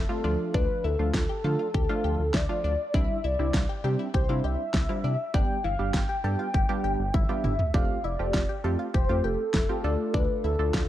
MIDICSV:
0, 0, Header, 1, 6, 480
1, 0, Start_track
1, 0, Key_signature, 0, "major"
1, 0, Tempo, 600000
1, 434, Time_signature, 4, 2, 24, 8
1, 8708, End_track
2, 0, Start_track
2, 0, Title_t, "Soft synth lead"
2, 0, Program_c, 0, 80
2, 0, Note_on_c, 0, 69, 97
2, 429, Note_off_c, 0, 69, 0
2, 433, Note_on_c, 0, 71, 93
2, 674, Note_on_c, 0, 69, 89
2, 686, Note_off_c, 0, 71, 0
2, 908, Note_off_c, 0, 69, 0
2, 913, Note_on_c, 0, 69, 93
2, 1875, Note_on_c, 0, 74, 113
2, 1887, Note_off_c, 0, 69, 0
2, 2353, Note_on_c, 0, 76, 109
2, 2365, Note_off_c, 0, 74, 0
2, 2594, Note_on_c, 0, 74, 105
2, 2606, Note_off_c, 0, 76, 0
2, 3073, Note_off_c, 0, 74, 0
2, 3313, Note_on_c, 0, 72, 95
2, 3554, Note_on_c, 0, 76, 109
2, 3566, Note_off_c, 0, 72, 0
2, 4273, Note_on_c, 0, 79, 107
2, 4285, Note_off_c, 0, 76, 0
2, 4508, Note_off_c, 0, 79, 0
2, 4513, Note_on_c, 0, 77, 103
2, 4736, Note_off_c, 0, 77, 0
2, 4754, Note_on_c, 0, 79, 113
2, 5712, Note_on_c, 0, 76, 103
2, 5724, Note_off_c, 0, 79, 0
2, 6193, Note_on_c, 0, 77, 96
2, 6205, Note_off_c, 0, 76, 0
2, 6432, Note_on_c, 0, 74, 88
2, 6444, Note_off_c, 0, 77, 0
2, 6912, Note_off_c, 0, 74, 0
2, 7153, Note_on_c, 0, 72, 94
2, 7393, Note_on_c, 0, 69, 95
2, 7405, Note_off_c, 0, 72, 0
2, 8113, Note_on_c, 0, 71, 92
2, 8125, Note_off_c, 0, 69, 0
2, 8349, Note_off_c, 0, 71, 0
2, 8354, Note_on_c, 0, 69, 89
2, 8577, Note_off_c, 0, 69, 0
2, 8593, Note_on_c, 0, 69, 98
2, 8708, Note_off_c, 0, 69, 0
2, 8708, End_track
3, 0, Start_track
3, 0, Title_t, "Synth arpeggio sound"
3, 0, Program_c, 1, 84
3, 73, Note_on_c, 1, 65, 73
3, 151, Note_off_c, 1, 65, 0
3, 193, Note_on_c, 1, 62, 81
3, 349, Note_off_c, 1, 62, 0
3, 434, Note_on_c, 1, 62, 94
3, 590, Note_off_c, 1, 62, 0
3, 674, Note_on_c, 1, 64, 79
3, 829, Note_off_c, 1, 64, 0
3, 914, Note_on_c, 1, 65, 82
3, 992, Note_off_c, 1, 65, 0
3, 1034, Note_on_c, 1, 67, 75
3, 1112, Note_off_c, 1, 67, 0
3, 1154, Note_on_c, 1, 69, 80
3, 1232, Note_off_c, 1, 69, 0
3, 1274, Note_on_c, 1, 65, 73
3, 1351, Note_off_c, 1, 65, 0
3, 1395, Note_on_c, 1, 67, 90
3, 1472, Note_off_c, 1, 67, 0
3, 1514, Note_on_c, 1, 65, 73
3, 1592, Note_off_c, 1, 65, 0
3, 1634, Note_on_c, 1, 67, 81
3, 1789, Note_off_c, 1, 67, 0
3, 1873, Note_on_c, 1, 64, 85
3, 1951, Note_off_c, 1, 64, 0
3, 1994, Note_on_c, 1, 65, 73
3, 2071, Note_off_c, 1, 65, 0
3, 2114, Note_on_c, 1, 62, 80
3, 2269, Note_off_c, 1, 62, 0
3, 2353, Note_on_c, 1, 62, 98
3, 2509, Note_off_c, 1, 62, 0
3, 2594, Note_on_c, 1, 64, 79
3, 2749, Note_off_c, 1, 64, 0
3, 2833, Note_on_c, 1, 65, 85
3, 2911, Note_off_c, 1, 65, 0
3, 2953, Note_on_c, 1, 67, 75
3, 3031, Note_off_c, 1, 67, 0
3, 3073, Note_on_c, 1, 67, 81
3, 3151, Note_off_c, 1, 67, 0
3, 3193, Note_on_c, 1, 64, 73
3, 3271, Note_off_c, 1, 64, 0
3, 3312, Note_on_c, 1, 67, 89
3, 3390, Note_off_c, 1, 67, 0
3, 3432, Note_on_c, 1, 65, 73
3, 3511, Note_off_c, 1, 65, 0
3, 3553, Note_on_c, 1, 67, 80
3, 3708, Note_off_c, 1, 67, 0
3, 3792, Note_on_c, 1, 64, 85
3, 3870, Note_off_c, 1, 64, 0
3, 3912, Note_on_c, 1, 65, 74
3, 3991, Note_off_c, 1, 65, 0
3, 4033, Note_on_c, 1, 62, 79
3, 4189, Note_off_c, 1, 62, 0
3, 4273, Note_on_c, 1, 62, 97
3, 4428, Note_off_c, 1, 62, 0
3, 4514, Note_on_c, 1, 52, 83
3, 4669, Note_off_c, 1, 52, 0
3, 4753, Note_on_c, 1, 65, 83
3, 4831, Note_off_c, 1, 65, 0
3, 4872, Note_on_c, 1, 67, 75
3, 4950, Note_off_c, 1, 67, 0
3, 4993, Note_on_c, 1, 69, 78
3, 5071, Note_off_c, 1, 69, 0
3, 5113, Note_on_c, 1, 65, 74
3, 5191, Note_off_c, 1, 65, 0
3, 5232, Note_on_c, 1, 67, 90
3, 5310, Note_off_c, 1, 67, 0
3, 5353, Note_on_c, 1, 65, 76
3, 5431, Note_off_c, 1, 65, 0
3, 5472, Note_on_c, 1, 67, 81
3, 5628, Note_off_c, 1, 67, 0
3, 5713, Note_on_c, 1, 64, 85
3, 5791, Note_off_c, 1, 64, 0
3, 5833, Note_on_c, 1, 65, 73
3, 5911, Note_off_c, 1, 65, 0
3, 5953, Note_on_c, 1, 64, 79
3, 6109, Note_off_c, 1, 64, 0
3, 6193, Note_on_c, 1, 62, 97
3, 6349, Note_off_c, 1, 62, 0
3, 6433, Note_on_c, 1, 64, 78
3, 6589, Note_off_c, 1, 64, 0
3, 6673, Note_on_c, 1, 65, 86
3, 6751, Note_off_c, 1, 65, 0
3, 6792, Note_on_c, 1, 67, 76
3, 6871, Note_off_c, 1, 67, 0
3, 6913, Note_on_c, 1, 69, 78
3, 6991, Note_off_c, 1, 69, 0
3, 7032, Note_on_c, 1, 65, 76
3, 7110, Note_off_c, 1, 65, 0
3, 7152, Note_on_c, 1, 67, 89
3, 7231, Note_off_c, 1, 67, 0
3, 7273, Note_on_c, 1, 65, 76
3, 7351, Note_off_c, 1, 65, 0
3, 7393, Note_on_c, 1, 67, 81
3, 7549, Note_off_c, 1, 67, 0
3, 7633, Note_on_c, 1, 64, 85
3, 7711, Note_off_c, 1, 64, 0
3, 7753, Note_on_c, 1, 65, 74
3, 7831, Note_off_c, 1, 65, 0
3, 7873, Note_on_c, 1, 62, 78
3, 8029, Note_off_c, 1, 62, 0
3, 8113, Note_on_c, 1, 62, 95
3, 8269, Note_off_c, 1, 62, 0
3, 8354, Note_on_c, 1, 64, 79
3, 8509, Note_off_c, 1, 64, 0
3, 8594, Note_on_c, 1, 65, 84
3, 8671, Note_off_c, 1, 65, 0
3, 8708, End_track
4, 0, Start_track
4, 0, Title_t, "Analog polysynth"
4, 0, Program_c, 2, 90
4, 73, Note_on_c, 2, 55, 72
4, 73, Note_on_c, 2, 57, 68
4, 73, Note_on_c, 2, 60, 67
4, 73, Note_on_c, 2, 65, 79
4, 182, Note_off_c, 2, 57, 0
4, 182, Note_off_c, 2, 65, 0
4, 185, Note_off_c, 2, 55, 0
4, 185, Note_off_c, 2, 60, 0
4, 192, Note_on_c, 2, 53, 80
4, 192, Note_on_c, 2, 57, 70
4, 192, Note_on_c, 2, 62, 73
4, 192, Note_on_c, 2, 65, 86
4, 673, Note_off_c, 2, 53, 0
4, 673, Note_off_c, 2, 57, 0
4, 673, Note_off_c, 2, 62, 0
4, 673, Note_off_c, 2, 65, 0
4, 793, Note_on_c, 2, 53, 73
4, 793, Note_on_c, 2, 57, 67
4, 793, Note_on_c, 2, 62, 67
4, 793, Note_on_c, 2, 65, 80
4, 984, Note_off_c, 2, 53, 0
4, 984, Note_off_c, 2, 57, 0
4, 984, Note_off_c, 2, 62, 0
4, 984, Note_off_c, 2, 65, 0
4, 1154, Note_on_c, 2, 53, 76
4, 1154, Note_on_c, 2, 57, 72
4, 1154, Note_on_c, 2, 62, 72
4, 1154, Note_on_c, 2, 65, 83
4, 1344, Note_off_c, 2, 53, 0
4, 1344, Note_off_c, 2, 57, 0
4, 1344, Note_off_c, 2, 62, 0
4, 1344, Note_off_c, 2, 65, 0
4, 1514, Note_on_c, 2, 53, 87
4, 1514, Note_on_c, 2, 62, 83
4, 1515, Note_on_c, 2, 57, 80
4, 1515, Note_on_c, 2, 65, 99
4, 1768, Note_off_c, 2, 53, 0
4, 1768, Note_off_c, 2, 57, 0
4, 1768, Note_off_c, 2, 62, 0
4, 1768, Note_off_c, 2, 65, 0
4, 1993, Note_on_c, 2, 53, 74
4, 1993, Note_on_c, 2, 57, 68
4, 1993, Note_on_c, 2, 62, 68
4, 1993, Note_on_c, 2, 65, 81
4, 2184, Note_off_c, 2, 53, 0
4, 2184, Note_off_c, 2, 57, 0
4, 2184, Note_off_c, 2, 62, 0
4, 2184, Note_off_c, 2, 65, 0
4, 2353, Note_on_c, 2, 55, 73
4, 2353, Note_on_c, 2, 60, 67
4, 2353, Note_on_c, 2, 62, 68
4, 2354, Note_on_c, 2, 64, 82
4, 2544, Note_off_c, 2, 55, 0
4, 2544, Note_off_c, 2, 60, 0
4, 2544, Note_off_c, 2, 62, 0
4, 2544, Note_off_c, 2, 64, 0
4, 2713, Note_on_c, 2, 55, 75
4, 2713, Note_on_c, 2, 60, 67
4, 2713, Note_on_c, 2, 62, 68
4, 2713, Note_on_c, 2, 64, 80
4, 2904, Note_off_c, 2, 55, 0
4, 2904, Note_off_c, 2, 60, 0
4, 2904, Note_off_c, 2, 62, 0
4, 2904, Note_off_c, 2, 64, 0
4, 3073, Note_on_c, 2, 60, 68
4, 3073, Note_on_c, 2, 62, 69
4, 3074, Note_on_c, 2, 55, 74
4, 3074, Note_on_c, 2, 67, 84
4, 3264, Note_off_c, 2, 55, 0
4, 3264, Note_off_c, 2, 60, 0
4, 3264, Note_off_c, 2, 62, 0
4, 3264, Note_off_c, 2, 67, 0
4, 3433, Note_on_c, 2, 55, 74
4, 3433, Note_on_c, 2, 60, 66
4, 3433, Note_on_c, 2, 62, 71
4, 3433, Note_on_c, 2, 64, 82
4, 3687, Note_off_c, 2, 55, 0
4, 3687, Note_off_c, 2, 60, 0
4, 3687, Note_off_c, 2, 62, 0
4, 3687, Note_off_c, 2, 64, 0
4, 3912, Note_on_c, 2, 60, 69
4, 3912, Note_on_c, 2, 62, 67
4, 3913, Note_on_c, 2, 55, 77
4, 3913, Note_on_c, 2, 64, 81
4, 4103, Note_off_c, 2, 55, 0
4, 4103, Note_off_c, 2, 60, 0
4, 4103, Note_off_c, 2, 62, 0
4, 4103, Note_off_c, 2, 64, 0
4, 4271, Note_on_c, 2, 59, 67
4, 4272, Note_on_c, 2, 55, 75
4, 4272, Note_on_c, 2, 62, 66
4, 4272, Note_on_c, 2, 67, 79
4, 4463, Note_off_c, 2, 55, 0
4, 4463, Note_off_c, 2, 59, 0
4, 4463, Note_off_c, 2, 62, 0
4, 4463, Note_off_c, 2, 67, 0
4, 4632, Note_on_c, 2, 55, 74
4, 4632, Note_on_c, 2, 59, 69
4, 4632, Note_on_c, 2, 62, 68
4, 4632, Note_on_c, 2, 67, 79
4, 4823, Note_off_c, 2, 55, 0
4, 4823, Note_off_c, 2, 59, 0
4, 4823, Note_off_c, 2, 62, 0
4, 4823, Note_off_c, 2, 67, 0
4, 4991, Note_on_c, 2, 55, 76
4, 4991, Note_on_c, 2, 59, 70
4, 4991, Note_on_c, 2, 67, 83
4, 4992, Note_on_c, 2, 62, 72
4, 5183, Note_off_c, 2, 55, 0
4, 5183, Note_off_c, 2, 59, 0
4, 5183, Note_off_c, 2, 62, 0
4, 5183, Note_off_c, 2, 67, 0
4, 5351, Note_on_c, 2, 67, 96
4, 5352, Note_on_c, 2, 55, 84
4, 5352, Note_on_c, 2, 59, 81
4, 5352, Note_on_c, 2, 62, 79
4, 5606, Note_off_c, 2, 55, 0
4, 5606, Note_off_c, 2, 59, 0
4, 5606, Note_off_c, 2, 62, 0
4, 5606, Note_off_c, 2, 67, 0
4, 5832, Note_on_c, 2, 55, 76
4, 5832, Note_on_c, 2, 59, 67
4, 5832, Note_on_c, 2, 62, 69
4, 5832, Note_on_c, 2, 67, 81
4, 6023, Note_off_c, 2, 55, 0
4, 6023, Note_off_c, 2, 59, 0
4, 6023, Note_off_c, 2, 62, 0
4, 6023, Note_off_c, 2, 67, 0
4, 6192, Note_on_c, 2, 57, 75
4, 6192, Note_on_c, 2, 65, 68
4, 6192, Note_on_c, 2, 67, 79
4, 6193, Note_on_c, 2, 60, 69
4, 6383, Note_off_c, 2, 57, 0
4, 6383, Note_off_c, 2, 65, 0
4, 6383, Note_off_c, 2, 67, 0
4, 6384, Note_off_c, 2, 60, 0
4, 6554, Note_on_c, 2, 57, 74
4, 6554, Note_on_c, 2, 60, 69
4, 6554, Note_on_c, 2, 65, 68
4, 6554, Note_on_c, 2, 67, 80
4, 6744, Note_off_c, 2, 57, 0
4, 6744, Note_off_c, 2, 60, 0
4, 6744, Note_off_c, 2, 65, 0
4, 6744, Note_off_c, 2, 67, 0
4, 6913, Note_on_c, 2, 57, 74
4, 6913, Note_on_c, 2, 60, 69
4, 6913, Note_on_c, 2, 65, 70
4, 6913, Note_on_c, 2, 67, 85
4, 7104, Note_off_c, 2, 57, 0
4, 7104, Note_off_c, 2, 60, 0
4, 7104, Note_off_c, 2, 65, 0
4, 7104, Note_off_c, 2, 67, 0
4, 7274, Note_on_c, 2, 65, 66
4, 7274, Note_on_c, 2, 67, 83
4, 7275, Note_on_c, 2, 57, 74
4, 7275, Note_on_c, 2, 60, 67
4, 7528, Note_off_c, 2, 57, 0
4, 7528, Note_off_c, 2, 60, 0
4, 7528, Note_off_c, 2, 65, 0
4, 7528, Note_off_c, 2, 67, 0
4, 7754, Note_on_c, 2, 57, 73
4, 7754, Note_on_c, 2, 60, 67
4, 7754, Note_on_c, 2, 65, 67
4, 7754, Note_on_c, 2, 67, 82
4, 7865, Note_off_c, 2, 57, 0
4, 7865, Note_off_c, 2, 65, 0
4, 7866, Note_off_c, 2, 60, 0
4, 7866, Note_off_c, 2, 67, 0
4, 7874, Note_on_c, 2, 57, 80
4, 7874, Note_on_c, 2, 65, 68
4, 7874, Note_on_c, 2, 69, 86
4, 7875, Note_on_c, 2, 62, 71
4, 8354, Note_off_c, 2, 57, 0
4, 8354, Note_off_c, 2, 62, 0
4, 8354, Note_off_c, 2, 65, 0
4, 8354, Note_off_c, 2, 69, 0
4, 8472, Note_on_c, 2, 62, 69
4, 8472, Note_on_c, 2, 65, 68
4, 8472, Note_on_c, 2, 69, 83
4, 8473, Note_on_c, 2, 57, 74
4, 8663, Note_off_c, 2, 57, 0
4, 8663, Note_off_c, 2, 62, 0
4, 8663, Note_off_c, 2, 65, 0
4, 8663, Note_off_c, 2, 69, 0
4, 8708, End_track
5, 0, Start_track
5, 0, Title_t, "Analog synth bass"
5, 0, Program_c, 3, 38
5, 196, Note_on_c, 3, 38, 102
5, 293, Note_off_c, 3, 38, 0
5, 434, Note_on_c, 3, 38, 109
5, 532, Note_off_c, 3, 38, 0
5, 674, Note_on_c, 3, 38, 100
5, 772, Note_off_c, 3, 38, 0
5, 794, Note_on_c, 3, 38, 96
5, 892, Note_off_c, 3, 38, 0
5, 912, Note_on_c, 3, 38, 97
5, 1011, Note_off_c, 3, 38, 0
5, 1154, Note_on_c, 3, 50, 97
5, 1253, Note_off_c, 3, 50, 0
5, 1395, Note_on_c, 3, 38, 108
5, 1493, Note_off_c, 3, 38, 0
5, 1634, Note_on_c, 3, 38, 99
5, 1732, Note_off_c, 3, 38, 0
5, 1753, Note_on_c, 3, 38, 91
5, 1852, Note_off_c, 3, 38, 0
5, 1874, Note_on_c, 3, 38, 100
5, 1972, Note_off_c, 3, 38, 0
5, 2113, Note_on_c, 3, 38, 98
5, 2212, Note_off_c, 3, 38, 0
5, 2353, Note_on_c, 3, 36, 107
5, 2452, Note_off_c, 3, 36, 0
5, 2594, Note_on_c, 3, 36, 92
5, 2692, Note_off_c, 3, 36, 0
5, 2714, Note_on_c, 3, 36, 97
5, 2812, Note_off_c, 3, 36, 0
5, 2831, Note_on_c, 3, 36, 98
5, 2931, Note_off_c, 3, 36, 0
5, 3074, Note_on_c, 3, 48, 101
5, 3172, Note_off_c, 3, 48, 0
5, 3314, Note_on_c, 3, 36, 104
5, 3412, Note_off_c, 3, 36, 0
5, 3433, Note_on_c, 3, 48, 94
5, 3532, Note_off_c, 3, 48, 0
5, 3554, Note_on_c, 3, 36, 96
5, 3652, Note_off_c, 3, 36, 0
5, 3794, Note_on_c, 3, 36, 96
5, 3892, Note_off_c, 3, 36, 0
5, 4033, Note_on_c, 3, 48, 103
5, 4132, Note_off_c, 3, 48, 0
5, 4273, Note_on_c, 3, 31, 104
5, 4372, Note_off_c, 3, 31, 0
5, 4513, Note_on_c, 3, 31, 94
5, 4612, Note_off_c, 3, 31, 0
5, 4633, Note_on_c, 3, 31, 97
5, 4732, Note_off_c, 3, 31, 0
5, 4751, Note_on_c, 3, 31, 96
5, 4851, Note_off_c, 3, 31, 0
5, 4992, Note_on_c, 3, 43, 98
5, 5091, Note_off_c, 3, 43, 0
5, 5235, Note_on_c, 3, 31, 99
5, 5333, Note_off_c, 3, 31, 0
5, 5472, Note_on_c, 3, 31, 94
5, 5571, Note_off_c, 3, 31, 0
5, 5593, Note_on_c, 3, 31, 100
5, 5692, Note_off_c, 3, 31, 0
5, 5713, Note_on_c, 3, 31, 101
5, 5812, Note_off_c, 3, 31, 0
5, 5952, Note_on_c, 3, 31, 109
5, 6051, Note_off_c, 3, 31, 0
5, 6193, Note_on_c, 3, 29, 111
5, 6292, Note_off_c, 3, 29, 0
5, 6433, Note_on_c, 3, 29, 98
5, 6532, Note_off_c, 3, 29, 0
5, 6554, Note_on_c, 3, 29, 98
5, 6652, Note_off_c, 3, 29, 0
5, 6671, Note_on_c, 3, 29, 105
5, 6771, Note_off_c, 3, 29, 0
5, 6913, Note_on_c, 3, 41, 104
5, 7012, Note_off_c, 3, 41, 0
5, 7155, Note_on_c, 3, 29, 108
5, 7253, Note_off_c, 3, 29, 0
5, 7273, Note_on_c, 3, 41, 101
5, 7372, Note_off_c, 3, 41, 0
5, 7393, Note_on_c, 3, 29, 96
5, 7492, Note_off_c, 3, 29, 0
5, 7633, Note_on_c, 3, 29, 109
5, 7732, Note_off_c, 3, 29, 0
5, 7873, Note_on_c, 3, 38, 108
5, 7972, Note_off_c, 3, 38, 0
5, 8113, Note_on_c, 3, 38, 111
5, 8212, Note_off_c, 3, 38, 0
5, 8353, Note_on_c, 3, 38, 98
5, 8452, Note_off_c, 3, 38, 0
5, 8472, Note_on_c, 3, 38, 95
5, 8571, Note_off_c, 3, 38, 0
5, 8591, Note_on_c, 3, 38, 93
5, 8691, Note_off_c, 3, 38, 0
5, 8708, End_track
6, 0, Start_track
6, 0, Title_t, "Drums"
6, 434, Note_on_c, 9, 36, 118
6, 514, Note_off_c, 9, 36, 0
6, 912, Note_on_c, 9, 36, 112
6, 915, Note_on_c, 9, 38, 108
6, 992, Note_off_c, 9, 36, 0
6, 995, Note_off_c, 9, 38, 0
6, 1395, Note_on_c, 9, 36, 109
6, 1475, Note_off_c, 9, 36, 0
6, 1871, Note_on_c, 9, 38, 110
6, 1874, Note_on_c, 9, 36, 106
6, 1951, Note_off_c, 9, 38, 0
6, 1954, Note_off_c, 9, 36, 0
6, 2353, Note_on_c, 9, 36, 118
6, 2433, Note_off_c, 9, 36, 0
6, 2831, Note_on_c, 9, 36, 112
6, 2834, Note_on_c, 9, 38, 110
6, 2911, Note_off_c, 9, 36, 0
6, 2914, Note_off_c, 9, 38, 0
6, 3314, Note_on_c, 9, 36, 107
6, 3394, Note_off_c, 9, 36, 0
6, 3791, Note_on_c, 9, 38, 104
6, 3793, Note_on_c, 9, 36, 106
6, 3871, Note_off_c, 9, 38, 0
6, 3873, Note_off_c, 9, 36, 0
6, 4273, Note_on_c, 9, 36, 118
6, 4353, Note_off_c, 9, 36, 0
6, 4751, Note_on_c, 9, 36, 109
6, 4753, Note_on_c, 9, 38, 109
6, 4831, Note_off_c, 9, 36, 0
6, 4833, Note_off_c, 9, 38, 0
6, 5234, Note_on_c, 9, 36, 112
6, 5314, Note_off_c, 9, 36, 0
6, 5713, Note_on_c, 9, 36, 106
6, 5713, Note_on_c, 9, 48, 57
6, 5793, Note_off_c, 9, 36, 0
6, 5793, Note_off_c, 9, 48, 0
6, 5953, Note_on_c, 9, 45, 89
6, 6033, Note_off_c, 9, 45, 0
6, 6073, Note_on_c, 9, 43, 88
6, 6153, Note_off_c, 9, 43, 0
6, 6193, Note_on_c, 9, 36, 117
6, 6273, Note_off_c, 9, 36, 0
6, 6671, Note_on_c, 9, 36, 115
6, 6674, Note_on_c, 9, 38, 109
6, 6751, Note_off_c, 9, 36, 0
6, 6754, Note_off_c, 9, 38, 0
6, 7155, Note_on_c, 9, 36, 107
6, 7235, Note_off_c, 9, 36, 0
6, 7631, Note_on_c, 9, 38, 106
6, 7634, Note_on_c, 9, 36, 106
6, 7711, Note_off_c, 9, 38, 0
6, 7714, Note_off_c, 9, 36, 0
6, 8113, Note_on_c, 9, 36, 114
6, 8193, Note_off_c, 9, 36, 0
6, 8592, Note_on_c, 9, 36, 109
6, 8594, Note_on_c, 9, 38, 109
6, 8672, Note_off_c, 9, 36, 0
6, 8674, Note_off_c, 9, 38, 0
6, 8708, End_track
0, 0, End_of_file